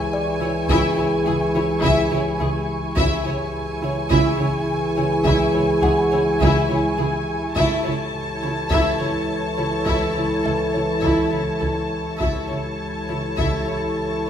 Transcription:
Already playing: synth drone C#2, french horn section E3 G#4, ambient pad E4 G#5 C#6, violin section G#5
0.13 music box D5
0.40 cello section C#3, viola section E4, violin section C#5
0.69 double bass section C#2, cello section C#3, viola section E4, violin section E5, taiko
0.97 cello section C#3, viola section E4, violin section C#5
1.26 double bass section C#2, cello section C#3, viola section E4, violin section G#4
1.54 cello section C#3, viola section E4, violin section C#5
1.82 double bass section C#2, cello section C#3, viola section E4, violin section E5, taiko
2.10 cello section C#3, viola section E4, violin section C#5
2.39 double bass section C#2, cello section C#3, viola section E4, violin section G#4
2.96 synth drone C#2, double bass section C#2, cello section C#3, french horn section E3 G#4, viola section E4, ambient pad E4 G#5 C#6, violin section E5 G#5, taiko
3.25 cello section C#3, viola section E4, violin section C#5
3.82 cello section C#3, viola section E4, violin section C#5
4.11 double bass section C#2, cello section C#3, viola section E4, violin section E5, taiko
4.39 cello section C#3, viola section E4, violin section C#5
4.96 cello section C#3, viola section E4, violin section C#5
5.24 double bass section C#2, cello section C#3, viola section E4, violin section E5, taiko
5.54 cello section C#3, viola section E4, violin section C#5
5.82 double bass section C#2, cello section C#3, viola section E4, music box F#4 F#5, violin section G#4
6.11 cello section C#3, viola section E4, violin section C#5
6.40 double bass section C#2, cello section C#3, viola section E4, violin section E5, taiko
6.69 cello section C#3, viola section E4, violin section C#5
6.98 double bass section C#2, cello section C#3, viola section E4, violin section G#4
7.56 double bass section C#2, synth drone C#2, cello section C#3, french horn section E3 A4, viola section E4, ambient pad E4 C#5 A5, violin section E5 A5, taiko
7.85 cello section C#3, viola section E4, violin section C#5
8.43 cello section C#3, viola section E4, violin section C#5
8.71 double bass section C#2, cello section C#3, viola section E4, violin section E5, taiko
9.00 cello section C#3, viola section E4, violin section C#5
9.57 cello section C#3, viola section E4, violin section C#5
9.86 double bass section C#2, cello section C#3, viola section E4, violin section E5, taiko
10.15 cello section C#3, viola section E4, violin section C#5
10.43 double bass section C#2, cello section C#3, music box E4 E5, viola section E4, violin section A4
10.73 cello section C#3, viola section E4, violin section C#5
11.01 double bass section C#2, cello section C#3, viola section E4, violin section E5, taiko
11.31 cello section C#3, viola section E4, violin section C#5
11.59 double bass section C#2, cello section C#3, viola section E4, violin section A4
12.19 synth drone C#2, double bass section C#2, cello section C#3, french horn section E3 A4, viola section E4, ambient pad E4 C#5 A5, violin section E5 A5, taiko
12.49 cello section C#3, viola section E4, violin section C#5
13.08 cello section C#3, viola section E4, violin section C#5
13.37 double bass section C#2, cello section C#3, viola section E4, violin section E5, taiko
13.67 cello section C#3, viola section E4, violin section C#5
14.26 violin section C#5

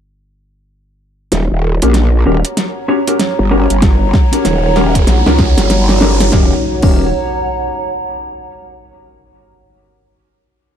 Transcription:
1.32 wobble bass D#1, analog synth pad G3 D#4 F#4 C#5, ambient pad C#5, snare, closed hi-hat, riser
1.51 wobble bass D#1
1.82 wobble bass A#1, clean electric guitar C#4 F#4 G4 A#4, closed hi-hat
1.87 ambient pad A#5
1.93 ambient pad F#5, snare, closed hi-hat
2.26 wobble bass D#1, clean electric guitar C#4 F#4 G4 A#4
2.45 closed hi-hat
2.57 snare, closed hi-hat
2.88 clean electric guitar C#4 F#4 G4 C#5
3.07 clean electric guitar C#4 F#4 G4 A#4, closed hi-hat
3.20 snare, closed hi-hat
3.39 wobble bass G1
3.51 clean electric guitar C#4 F#4 G4 A#4
3.70 wobble bass G1, closed hi-hat
3.82 kick, snare, closed hi-hat
4.13 kick, snare
4.32 clean electric guitar C#4 F#4 G4 A#4, closed hi-hat
4.45 wobble bass D#1, snare, closed hi-hat
4.76 clean electric guitar C#4 F#4 G4 A#4, snare
4.95 kick, closed hi-hat
5.07 wobble bass A#1, snare, closed hi-hat
5.27 wobble bass C#2, clean electric guitar C#4 F#4 G4 A#4, snare
5.39 kick, snare
5.57 wobble bass G1, snare, closed hi-hat
5.70 wobble bass G1, snare, closed hi-hat
5.89 snare
6.01 clean electric guitar C#4 F#4 G4 A#4, snare
6.20 snare, closed hi-hat
6.32 wobble bass D#1, analog synth pad G3 D#4 F#4 C#5, clean electric guitar C#4 F#4 G4 A#4, ambient pad C#5, kick, snare, impact
6.45 ambient pad F#5
6.55 ambient pad A#5
6.82 wobble bass D#1, clean electric guitar C#4 F#4 G4 A#4, kick, crash

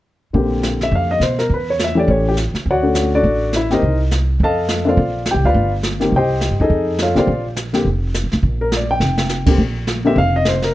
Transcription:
0.33 upright bass A#1, grand piano D3 A#3 C4 G4, brush sweep, kick
0.63 snare, hi-hat pedal
0.81 grand piano E5, snare
0.92 upright bass F2, grand piano F5, brush sweep, kick
1.11 grand piano D#5
1.20 upright bass B2, grand piano C5, snare, hi-hat pedal
1.39 grand piano A#4, snare
1.50 upright bass E2, brush sweep, kick
1.54 grand piano B4
1.70 grand piano C#5
1.79 snare, hi-hat pedal
1.84 grand piano E5
1.95 grand piano E3 A3 C#4 G4
1.99 grand piano D5
2.08 upright bass A1, grand piano C#5, brush sweep, kick
2.29 grand piano G4
2.37 snare, hi-hat pedal
2.54 muted upright bass stroke, snare
2.66 upright bass D2, brush sweep, kick
2.71 grand piano F#4 C#5 D5 F#5
2.83 grand piano D3 A3 C#4 F#4
2.95 snare, hi-hat pedal
3.15 grand piano D4 F#4 A4 D5
3.24 upright bass A1, brush sweep, kick
3.53 grand piano E5, snare, hi-hat pedal
3.57 grand piano E4
3.70 grand piano D#3 A#3 C4 D#4 G4 C5 D#5, snare
3.74 grand piano A#4
3.82 upright bass C2, brush sweep, kick
4.11 snare, hi-hat pedal
4.40 upright bass F2, grand piano A4 D#5, brush sweep, kick
4.44 grand piano F5 A5
4.68 snare, hi-hat pedal
4.85 grand piano D3 A#3 C4 A4 D5 F5
4.89 grand piano F4 C5
4.97 upright bass A#1, brush sweep, kick
5.26 snare, hi-hat pedal
5.31 upright bass C2, grand piano G4 G5
5.44 upright bass D2, grand piano F4 B4 D5 F5
5.54 upright bass G1, brush sweep, kick
5.83 snare, hi-hat pedal
6.00 grand piano D#3 A#3 C4 G4, snare
6.12 upright bass C2, brush sweep, kick
6.16 grand piano G4 C5 D#5 G5
6.41 snare, hi-hat pedal
6.51 upright bass G2
6.60 upright bass D#2, grand piano D#4 G#4 A4 D#5
6.70 upright bass F2, brush sweep, kick
6.98 grand piano F5, snare, hi-hat pedal
7.02 grand piano F4 A4 C#5
7.15 upright bass B1, grand piano D3 A#3 C4 F4 G4 C5 D5 F5, snare
7.27 upright bass A#1, brush sweep, kick
7.56 snare, hi-hat pedal
7.73 grand piano D3 A#3 C4 G4, snare
7.85 upright bass F1, brush sweep, kick
8.14 snare, hi-hat pedal
8.24 upright bass A#1
8.32 upright bass B1, snare
8.43 upright bass A#1, brush sweep, kick
8.61 grand piano A#4
8.72 snare, hi-hat pedal
8.76 grand piano D5
8.91 grand piano G5
9.00 upright bass F1, snare
9.18 snare
9.29 snare, hi-hat pedal
9.46 grand piano D3 A#3 C4 G4, kick, crash
9.58 upright bass A#1, brush sweep, kick
9.87 snare, hi-hat pedal
10.04 grand piano D3 A#3 C4 G4 E5
10.16 upright bass F1, grand piano F5, brush sweep, kick
10.36 grand piano D#5
10.45 grand piano C5, snare, hi-hat pedal
10.62 grand piano A#4, snare

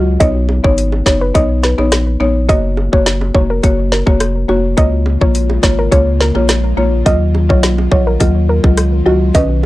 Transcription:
Already playing: sub bass C#2, marimba F#3 F4 D#5, downlifter
0.20 sub bass B1, marimba B3 D#4 C#5, synth pluck D#5, kick, closed hi-hat, high bongo
0.49 high bongo
0.64 sub bass G#1, marimba B3 D#4 C#5, synth pluck C#5, kick
0.78 closed hi-hat
0.92 high bongo
1.06 sub bass F#1, marimba B3 D#4 C#5, synth pluck C#5, kick, snare, high bongo
1.21 synth pluck B4
1.34 sub bass B1, marimba B3 D#4 C#5, synth pluck D#5, kick, closed hi-hat, high bongo
1.63 synth pluck B4, snare
1.78 sub bass A#1, marimba B3 D#4 C#5, high bongo
1.92 cross-stick, snare, closed hi-hat
2.20 sub bass A#1, marimba B3 D#4 C#5, low bongo
2.49 sub bass F#1, marimba A#3 F#4 C#5, synth pluck D#5, kick, closed hi-hat, high bongo
2.77 high bongo
2.93 sub bass F#1, marimba A#3 F#4 C#5, synth pluck C#5, kick
3.06 snare, closed hi-hat
3.21 high bongo
3.34 sub bass F1, marimba A#3 F#4 C#5, synth pluck C#5, kick, high bongo, low bongo
3.50 synth pluck A#4
3.63 sub bass F#1, marimba A#3 F#4 C#5, kick, closed hi-hat, high bongo
3.92 synth pluck A#4, snare
4.07 sub bass F1, marimba A#3 F#4 C#5, kick, high bongo
4.20 cross-stick, closed hi-hat
4.48 sub bass F1, marimba A#3 F#4 C#5, synth pluck F#4, low bongo
4.77 sub bass C#2, analog synth pad C#3 G#3 A#3 F4, marimba A#3 F4 C#5, synth pluck D#5, kick, closed hi-hat, high bongo
5.06 high bongo
5.21 sub bass A#1, marimba A#3 F4 C#5, synth pluck C#5, kick
5.35 closed hi-hat
5.50 high bongo
5.63 sub bass G#1, marimba A#3 F4 C#5, synth pluck C#5, kick, snare, high bongo
5.79 synth pluck A#4
5.92 sub bass C#2, marimba A#3 F4 C#5, synth pluck C#5, kick, closed hi-hat, high bongo
6.21 synth pluck A#4, snare
6.35 sub bass A#1, marimba A#3 F4 C#5, high bongo
6.49 cross-stick, snare, closed hi-hat
6.77 sub bass A#1, marimba A#3 F4 C#5, low bongo
7.06 sub bass D#2, analog synth pad D#3 F#3, marimba F#3 F4 D#5, synth pluck D#5, kick, closed hi-hat, high bongo
7.35 high bongo
7.49 sub bass B1, marimba F#3 F4 D#5, synth pluck C#5, kick
7.63 snare, closed hi-hat
7.78 high bongo
7.91 sub bass A#1, marimba F#3 F4 D#5, synth pluck C#5, kick, high bongo
8.07 synth pluck A#4
8.20 sub bass D#2, marimba F#3 F4 D#5, kick, closed hi-hat, high bongo
8.49 synth pluck A#4
8.64 sub bass C#2, marimba F#3 F4 D#5, kick, high bongo
8.77 cross-stick, closed hi-hat
9.06 sub bass C#2, marimba F#3 F4 D#5, synth pluck F#4, low bongo
9.34 sub bass B1, marimba D#3 C#4 B4, analog synth pad B3 C#4 F#4, synth pluck D#5, kick, closed hi-hat, high bongo

